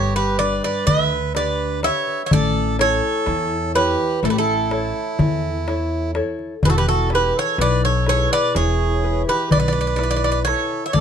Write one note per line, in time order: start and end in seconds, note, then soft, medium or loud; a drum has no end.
0.00 0.59 G1 medium
0.00 0.85 G3 medium
0.00 0.21 D4 soft
0.00 0.14 G4 medium
0.00 0.21 G4 soft
0.00 0.21 B4 medium
0.00 0.16 C#5 medium
0.16 0.38 G4 medium
0.16 0.38 B4 medium
0.39 1.16 D4 soft
0.39 1.16 G4 soft
0.39 0.62 B4 medium
0.39 1.17 B4 soft
0.39 0.63 D5 medium
0.39 darbuka tek medium
0.64 0.86 B4 medium
0.64 0.86 D5 medium
0.64 darbuka tek soft
0.87 1.88 D2 medium
0.87 1.81 D3 medium
0.87 1.33 B4 medium
0.87 1.32 E5 loud
0.87 darbuka dum medium
1.35 1.83 D4 soft
1.35 1.83 G4 soft
1.35 1.80 B4 medium
1.35 1.83 B4 medium
1.35 1.81 D5 medium
1.35 darbuka tek medium
1.83 2.22 D4 soft
1.83 2.22 G4 soft
1.83 2.22 B4 medium
1.83 2.22 C#5 medium
1.83 2.22 E5 medium
1.83 darbuka tek medium
2.08 darbuka tek soft
2.25 2.31 C#5 medium
2.25 2.32 E5 medium
2.31 2.99 A1 loud
2.31 3.25 A3 medium
2.31 2.77 A4 medium
2.31 2.77 D5 loud
2.31 darbuka dum loud
2.78 3.56 E4 soft
2.78 3.56 A4 soft
2.78 3.72 A4 medium
2.78 3.56 C#5 medium
2.78 3.72 C#5 medium
2.78 darbuka tek medium
3.26 3.94 E2 medium
3.26 4.20 E3 medium
3.26 darbuka tek medium
3.75 4.52 E4 soft
3.75 4.20 G4 medium
3.75 4.52 A4 soft
3.75 4.25 B4 medium
3.75 4.52 C#5 medium
3.75 darbuka tek medium
4.00 darbuka tek soft
4.23 4.90 A1 loud
4.23 5.16 A3 medium
4.23 4.30 E4 medium
4.23 4.30 A4 medium
4.23 darbuka tek medium
4.30 4.37 G4 medium
4.30 4.37 B4 medium
4.38 6.11 E4 medium
4.38 6.12 A4 medium
4.71 5.48 E4 soft
4.71 5.48 A4 soft
4.71 5.49 C#5 medium
4.71 darbuka tek medium
4.95 darbuka tek soft
5.19 6.20 E2 loud
5.19 6.12 E3 medium
5.19 darbuka dum loud
5.68 6.14 E4 soft
5.68 6.15 A4 soft
5.68 6.15 C#5 medium
5.68 darbuka tek medium
6.15 6.53 E4 soft
6.15 6.54 A4 soft
6.15 6.54 C#5 medium
6.15 darbuka tek medium
6.39 darbuka tek soft
6.63 7.30 E1 medium
6.63 7.56 E3 medium
6.63 6.70 G#4 medium
6.63 6.69 B4 medium
6.63 darbuka dum medium
6.68 6.74 F#4 medium
6.68 6.75 A4 medium
6.76 6.87 G4 medium
6.76 6.88 B4 medium
6.88 7.10 F#4 medium
6.88 7.10 A4 medium
7.10 7.88 E4 soft
7.10 7.34 G4 medium
7.10 7.88 G#4 soft
7.10 7.88 B4 medium
7.10 darbuka tek medium
7.15 7.37 B4 medium
7.36 7.58 A4 medium
7.36 7.59 C#5 medium
7.58 8.26 B1 medium
7.58 8.52 B2 medium
7.58 7.82 B4 medium
7.58 7.82 D5 loud
7.58 darbuka tek medium
7.83 8.05 A4 medium
7.83 8.08 C#5 medium
8.06 8.84 E4 soft
8.06 8.84 G#4 soft
8.06 8.29 A4 medium
8.06 8.84 B4 medium
8.06 8.30 C#5 medium
8.06 darbuka tek medium
8.31 8.53 B4 medium
8.31 8.56 D5 loud
8.31 darbuka tek soft
8.54 9.22 E1 medium
8.54 9.48 E3 medium
8.54 9.22 G#4 medium
8.54 9.23 C#5 medium
8.54 darbuka tek medium
9.03 9.80 E4 soft
9.03 9.80 G#4 soft
9.03 9.80 B4 medium
9.27 9.49 G4 medium
9.27 9.50 B4 medium
9.27 darbuka tek soft
9.51 10.51 B1 medium
9.51 10.44 B2 medium
9.51 10.43 B4 medium
9.51 9.58 D5 medium
9.51 darbuka dum loud
9.60 9.66 D5 medium
9.68 9.71 D5 medium
9.73 9.80 D5 medium
9.81 9.86 D5 medium
9.87 9.94 D5 soft
9.96 10.46 E4 medium
9.96 10.47 B4 medium
9.96 10.02 D5 medium
9.96 darbuka tek medium
10.03 10.09 D5 medium
10.11 10.15 D5 medium
10.16 10.23 D5 medium
10.24 10.30 D5 medium
10.32 10.39 D5 medium
10.45 10.85 E4 soft
10.45 10.85 A4 medium
10.45 10.86 B4 soft
10.45 10.85 C#5 medium
10.45 darbuka tek medium
10.71 darbuka tek soft
10.86 10.94 C#5 medium
10.86 10.93 E5 medium
10.93 11.01 A1 loud
10.93 11.01 A3 medium
10.93 11.01 A4 medium
10.93 11.01 D5 medium
10.93 darbuka dum medium